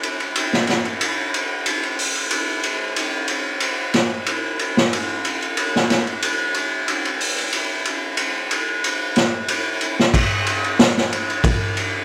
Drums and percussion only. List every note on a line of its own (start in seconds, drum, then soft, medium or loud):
0.03 ride medium
0.20 ride soft
0.35 ride medium
0.53 snare soft
0.67 snare soft
0.67 ride medium
0.85 ride soft
1.01 ride medium
1.34 ride medium
1.66 ride medium
1.83 ride soft
1.99 open hi-hat medium
2.15 ride soft
2.31 ride medium
2.63 ride medium
2.96 ride medium
3.28 ride medium
3.60 ride medium
3.94 snare soft
3.94 ride medium
4.26 ride medium
4.59 ride medium
4.77 snare medium
4.93 ride medium
5.25 ride medium
5.42 ride soft
5.57 ride medium
5.76 snare soft
5.90 snare soft
5.90 ride medium
6.07 ride soft
6.22 ride medium
6.54 ride medium
6.88 ride medium
7.05 ride soft
7.20 open hi-hat medium
7.38 ride soft
7.52 ride medium
7.85 ride medium
8.17 ride medium
8.51 ride medium
8.84 ride medium
9.16 snare medium
9.16 ride medium
9.48 ride medium
9.81 ride medium
10.00 snare medium
10.14 kick medium
10.14 crash medium
10.14 ride medium
10.46 ride medium
10.64 ride soft
10.79 snare loud
10.79 ride medium
10.98 snare soft
11.12 ride medium
11.30 ride soft
11.44 kick loud
11.44 ride loud
11.77 ride medium